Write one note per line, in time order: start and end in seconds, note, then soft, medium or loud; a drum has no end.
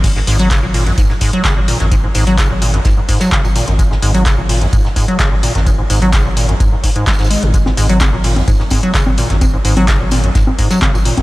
0.00 0.21 G#1 loud
0.00 0.08 G#2 loud
0.00 kick loud
0.00 closed hi-hat medium
0.00 crash medium
0.04 tambourine medium
0.16 0.20 G#2 medium
0.16 snare medium
0.27 0.56 G#1 loud
0.27 0.37 G#2 loud
0.27 snare soft
0.27 open hi-hat loud
0.27 tambourine medium
0.39 0.49 F#3 loud
0.39 closed hi-hat soft
0.39 closed hi-hat medium
0.51 0.61 C#3 medium
0.51 kick loud
0.51 snare loud
0.51 clap loud
0.51 closed hi-hat medium
0.51 tambourine medium
0.63 0.92 G#1 medium
0.63 0.67 A#2 medium
0.74 0.84 A#2 medium
0.74 open hi-hat medium
0.74 open hi-hat loud
0.86 0.93 F#2 medium
0.86 closed hi-hat medium
0.98 1.06 G#2 loud
0.98 1.02 G#2 loud
0.98 kick loud
0.98 closed hi-hat medium
0.98 tambourine medium
1.10 1.14 G#2 medium
1.10 snare soft
1.21 1.31 G#2 loud
1.21 kick medium
1.21 snare soft
1.21 open hi-hat loud
1.21 tambourine medium
1.33 1.43 F#3 loud
1.33 closed hi-hat soft
1.45 1.74 G#1 medium
1.45 1.55 C#3 medium
1.45 kick loud
1.45 snare loud
1.45 clap loud
1.45 closed hi-hat soft
1.45 tambourine medium
1.57 1.60 A#2 medium
1.68 1.78 A#2 medium
1.68 open hi-hat loud
1.68 tambourine medium
1.80 2.09 G#1 medium
1.80 1.86 F#2 medium
1.80 snare medium
1.80 closed hi-hat medium
1.91 1.95 G#2 loud
1.91 kick loud
1.91 closed hi-hat medium
1.91 tambourine medium
2.04 2.07 G#2 medium
2.15 2.44 G#1 loud
2.15 2.25 G#2 loud
2.15 open hi-hat loud
2.15 tambourine medium
2.27 2.36 F#3 loud
2.27 closed hi-hat soft
2.27 closed hi-hat medium
2.38 2.48 C#3 medium
2.38 kick loud
2.38 snare loud
2.38 clap loud
2.38 closed hi-hat medium
2.38 tambourine medium
2.50 2.79 G#1 medium
2.50 2.54 A#2 medium
2.62 2.72 A#2 medium
2.62 open hi-hat loud
2.62 tambourine medium
2.74 2.80 F#2 medium
2.74 closed hi-hat medium
2.85 2.89 G#2 loud
2.85 2.93 G#2 loud
2.85 kick loud
2.85 snare loud
2.85 closed hi-hat medium
2.85 tambourine medium
2.97 3.01 G#2 medium
3.08 3.19 G#2 loud
3.08 kick medium
3.08 open hi-hat loud
3.08 tambourine medium
3.20 3.30 F#3 loud
3.20 snare loud
3.20 closed hi-hat soft
3.20 tambourine medium
3.32 3.61 G#1 medium
3.32 3.42 C#3 medium
3.32 kick loud
3.32 clap loud
3.32 closed hi-hat soft
3.44 3.48 A#2 medium
3.44 tambourine medium
3.56 3.66 A#2 medium
3.56 open hi-hat loud
3.56 tambourine medium
3.68 3.96 G#1 medium
3.68 3.74 F#2 medium
3.68 closed hi-hat medium
3.79 3.83 G#2 loud
3.79 kick loud
3.79 closed hi-hat medium
3.79 tambourine medium
3.91 3.95 G#2 medium
3.91 snare soft
4.02 4.31 G#1 loud
4.02 4.12 G#2 loud
4.02 snare soft
4.02 open hi-hat loud
4.02 tambourine medium
4.14 4.24 F#3 loud
4.14 closed hi-hat soft
4.25 4.36 C#3 medium
4.25 kick loud
4.25 snare loud
4.25 clap loud
4.25 closed hi-hat medium
4.25 tambourine medium
4.38 4.67 G#1 medium
4.38 4.42 A#2 medium
4.49 4.59 A#2 medium
4.49 open hi-hat loud
4.49 open hi-hat medium
4.61 4.68 F#2 medium
4.61 closed hi-hat soft
4.73 4.77 G#2 loud
4.73 4.81 G#2 loud
4.73 kick loud
4.73 closed hi-hat medium
4.73 tambourine medium
4.85 4.89 G#2 medium
4.85 snare soft
4.96 5.06 G#2 loud
4.96 kick medium
4.96 snare soft
4.96 open hi-hat loud
4.96 tambourine medium
5.08 5.18 F#3 loud
5.08 closed hi-hat soft
5.19 5.49 G#1 medium
5.19 5.30 C#3 medium
5.19 kick loud
5.19 snare loud
5.19 clap loud
5.19 closed hi-hat soft
5.19 tambourine medium
5.32 5.35 A#2 medium
5.43 5.53 A#2 medium
5.43 open hi-hat loud
5.43 tambourine medium
5.55 5.84 G#1 medium
5.55 5.61 F#2 medium
5.55 snare medium
5.55 closed hi-hat medium
5.66 5.70 G#2 loud
5.66 kick loud
5.66 closed hi-hat medium
5.66 tambourine medium
5.78 5.82 G#2 medium
5.90 6.19 G#1 loud
5.90 6.00 G#2 loud
5.90 open hi-hat loud
5.90 tambourine medium
6.02 6.11 F#3 loud
6.02 closed hi-hat soft
6.13 6.23 C#3 medium
6.13 kick loud
6.13 snare loud
6.13 clap loud
6.13 closed hi-hat medium
6.13 tambourine medium
6.25 6.54 G#1 medium
6.25 6.29 A#2 medium
6.37 6.47 A#2 medium
6.37 open hi-hat loud
6.37 tambourine medium
6.49 6.55 F#2 medium
6.49 closed hi-hat soft
6.60 6.68 G#2 loud
6.60 6.64 G#2 loud
6.60 kick loud
6.60 closed hi-hat medium
6.60 tambourine medium
6.72 6.76 G#2 medium
6.84 6.90 G#2 medium
6.84 kick medium
6.84 open hi-hat loud
6.84 tambourine medium
6.96 7.05 G#2 loud
6.96 closed hi-hat soft
7.07 7.36 G#1 loud
7.07 7.11 G#3 medium
7.07 kick loud
7.07 snare medium
7.07 clap loud
7.07 closed hi-hat soft
7.07 tambourine medium
7.12 snare medium
7.12 tambourine medium
7.19 7.29 G#2 medium
7.19 snare medium
7.19 tambourine medium
7.24 snare medium
7.24 tambourine medium
7.30 7.44 G#3 medium
7.30 open hi-hat loud
7.30 tambourine medium
7.43 7.71 G#1 loud
7.43 7.52 G#2 medium
7.43 closed hi-hat soft
7.54 7.58 G#2 loud
7.54 kick loud
7.54 closed hi-hat medium
7.54 tambourine medium
7.66 7.70 G#2 medium
7.66 snare soft
7.66 high conga medium
7.77 8.06 G#1 loud
7.77 7.87 G#2 loud
7.77 snare soft
7.77 open hi-hat loud
7.77 tambourine medium
7.89 7.99 F#3 loud
7.89 closed hi-hat soft
8.00 8.11 C#3 medium
8.00 kick loud
8.00 snare loud
8.00 clap loud
8.00 closed hi-hat medium
8.00 tambourine medium
8.00 high conga medium
8.13 8.42 G#1 medium
8.13 8.17 A#2 medium
8.24 8.34 A#2 medium
8.24 open hi-hat medium
8.24 open hi-hat loud
8.36 8.43 F#2 medium
8.36 closed hi-hat soft
8.36 high conga medium
8.48 8.56 G#2 loud
8.48 8.52 G#2 loud
8.48 kick loud
8.48 closed hi-hat medium
8.48 tambourine medium
8.59 8.64 G#2 medium
8.59 snare soft
8.70 8.81 G#2 loud
8.70 kick medium
8.70 snare soft
8.70 open hi-hat loud
8.70 tambourine medium
8.70 high conga medium
8.83 8.93 F#3 loud
8.83 closed hi-hat soft
8.94 9.24 G#1 medium
8.94 9.05 C#3 medium
8.94 kick loud
8.94 snare loud
8.94 clap loud
8.94 closed hi-hat soft
8.94 tambourine medium
9.07 9.10 A#2 medium
9.07 high conga medium
9.18 9.28 A#2 medium
9.18 open hi-hat loud
9.18 tambourine medium
9.30 9.59 G#1 medium
9.30 9.36 F#2 medium
9.30 snare medium
9.30 closed hi-hat soft
9.41 9.45 G#2 loud
9.41 kick loud
9.41 closed hi-hat medium
9.41 tambourine medium
9.41 high conga medium
9.53 9.57 G#2 medium
9.65 9.94 G#1 loud
9.65 9.75 G#2 loud
9.65 open hi-hat loud
9.65 tambourine medium
9.76 9.86 F#3 loud
9.76 closed hi-hat soft
9.76 closed hi-hat medium
9.76 high conga medium
9.88 9.98 C#3 medium
9.88 kick loud
9.88 snare loud
9.88 clap loud
9.88 closed hi-hat medium
9.88 tambourine medium
10.00 10.29 G#1 medium
10.00 10.04 A#2 medium
10.11 10.22 A#2 medium
10.11 open hi-hat loud
10.11 tambourine medium
10.11 high conga medium
10.24 10.30 F#2 medium
10.24 closed hi-hat soft
10.35 10.39 G#2 loud
10.35 10.43 G#2 loud
10.35 kick loud
10.35 snare loud
10.35 closed hi-hat medium
10.35 tambourine medium
10.47 10.51 G#2 medium
10.47 high conga medium
10.59 10.69 G#2 loud
10.59 kick medium
10.59 open hi-hat loud
10.59 tambourine medium
10.70 10.80 F#3 loud
10.70 snare loud
10.70 closed hi-hat soft
10.70 tambourine medium
10.82 11.11 G#1 medium
10.82 10.92 C#3 medium
10.82 kick loud
10.82 clap loud
10.82 closed hi-hat soft
10.82 high conga medium
10.94 10.98 A#2 medium
10.94 tambourine medium
11.05 11.15 A#2 medium
11.05 open hi-hat loud
11.05 tambourine medium
11.17 11.22 G#1 medium
11.17 11.22 F#2 medium
11.17 closed hi-hat soft
11.17 high conga medium